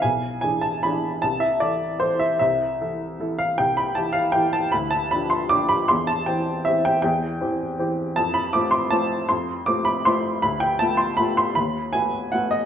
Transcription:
\new Staff \with { instrumentName = "Upright piano" } { \time 3/4 \key a \minor \tempo 4 = 156 << { gis''4 gis''8 a''8 b''4 | a''8 e''8 d''4 c''8 e''8 | e''2~ e''8 f''8 | g''8 b''8 a''8 f''8 g''8 a''8 |
b''8 a''8 b''8 c'''8 d'''8 b''8 | c'''8 a''8 g''4 e''8 g''8 | g''2~ g''8 r8 | a''8 b''8 d'''8 c'''8 a''4 |
c'''4 d'''8 b''8 c'''4 | b''8 g''8 a''8 c'''8 b''8 c'''8 | b''4 gis''4 fis''8 dis''8 | } \\ { b,,4 <e d' gis'>4 <e d' gis'>4 | c,4 <e e' a'>4 <e e' a'>4 | c,4 <e e' a'>4 <e e' a'>4 | c,4 <e e' g'>4 <e e' g'>4 |
d,4 <f d' g'>4 <f d' g'>4 | e,4 <e c' g'>4 <e c' g'>4 | e,4 <e c' g'>4 <e c' g'>4 | f,4 <a c' f'>4 <a c' f'>4 |
f,4 <a c' f'>4 <a c' f'>4 | d,4 <a b f'>4 <a b f'>4 | dis,4 <a b fis'>4 <a b fis'>4 | } >> }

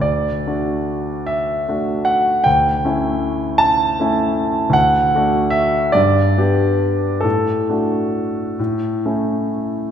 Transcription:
\new Staff \with { instrumentName = "Grand piano" } { \time 6/8 \key d \major \tempo 4. = 49 << { d''4. e''4 fis''8 | g''4. a''4. | fis''4 e''8 d''4. | a'2~ a'8 r8 | } \\ { d,8 <a d' fis'>4. <a d' fis'>4 | d,8 <a cis' e'>4. <a cis' e'>4 | d,8 <a d' fis'>4 g,8 <b d' g'>4 | a,8 <a d' fis'>4 a,8 <a cis' e'>4 | } >> }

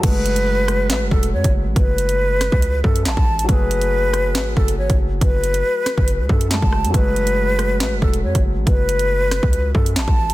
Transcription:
<<
  \new Staff \with { instrumentName = "Flute" } { \time 4/4 \key fis \minor \tempo 4 = 139 b'2~ b'8 a'8 cis''8 r8 | b'2~ b'8 a'8 a''4 | b'2~ b'8 a'8 cis''8 r8 | b'2~ b'8 a'8 a''4 |
b'2~ b'8 a'8 cis''8 r8 | b'2~ b'8 a'8 a''4 | }
  \new Staff \with { instrumentName = "Grand piano" } { \clef bass \time 4/4 \key fis \minor <fis gis a>1~ | <fis gis a>1 | <fis a gis'>1~ | <fis a gis'>2. <fis gis a>4 |
<fis gis a>1~ | <fis gis a>1 | }
  \new Staff \with { instrumentName = "808-style bass" } { \clef bass \time 4/4 \key fis \minor fis,,2 a,,16 fis,,16 e,,8 fis,16 fis,,8 a,,16 | fis,,4.~ fis,,16 cis,8. fis,8 a,,16 a,,8. | fis,,2 gis,,8 fis,,8 gis,,16 fis,,8. | fis,,4 r8. fis,,8 cis,16 fis,8. fis,,8 fis,16 |
fis,,2 a,,16 fis,,16 e,,8 fis,16 fis,,8 a,,16 | fis,,4.~ fis,,16 cis,8. fis,8 a,,16 a,,8. | }
  \new DrumStaff \with { instrumentName = "Drums" } \drummode { \time 4/4 <cymc hh bd>8 hh16 hh16 r8 <hh ss>8 <hc hh sn>8 bd16 hh16 r16 <hh bd>8. | <hh bd>8 hh16 hh16 r8 <hh ss sn>16 bd16 hh8 bd16 hh16 <hc hh sn>16 bd8 hh16 | <hh bd>8 hh16 hh16 r8 <hh ss>8 <hc hh sn>8 bd16 hh16 r16 <hh bd>8. | <hh bd>8 hh16 hh16 r8 <hh ss sn>16 bd16 hh8 bd16 hh16 <hc hh sn>16 bd16 ss16 hh16 |
<hh bd>8 hh16 hh16 r8 <hh ss>8 <hc hh sn>8 bd16 hh16 r16 <hh bd>8. | <hh bd>8 hh16 hh16 r8 <hh ss sn>16 bd16 hh8 bd16 hh16 <hc hh sn>16 bd8 hh16 | }
>>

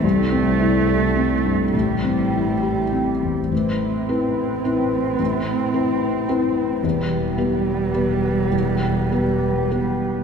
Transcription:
<<
  \new Staff \with { instrumentName = "Analog synth pad" } { \time 3/4 \key a \minor \tempo 4 = 106 <c' e' a'>2. | <c' e' g'>2. | <c' e' b'>2.~ | <c' e' b'>2. |
<b g' b'>2.~ | <b g' b'>2. | }
  \new Staff \with { instrumentName = "Felt piano" } { \time 3/4 \key a \minor c,8 c'8 e'8 a'8 c'8 g,8 | a,,8 c'8 e'8 g'8 c'8 e,8 | a,,4 <c' e' b'>4 <c' e' b'>4 | a,,4 <c' e' b'>4 <c' e' b'>4 |
e,4 <b g' b'>4 <b g' b'>4 | e,4 <b g' b'>4 <b g' b'>4 | }
  \new Staff \with { instrumentName = "Cello" } { \clef bass \time 3/4 \key a \minor a2. | g2~ g8 r8 | c'2.~ | c'2. |
g2.~ | g2~ g8 r8 | }
  \new Staff \with { instrumentName = "Double bass" } { \clef bass \time 3/4 \key a \minor c,2. | a,,2. | a,,2.~ | a,,2. |
e,,2.~ | e,,2. | }
>>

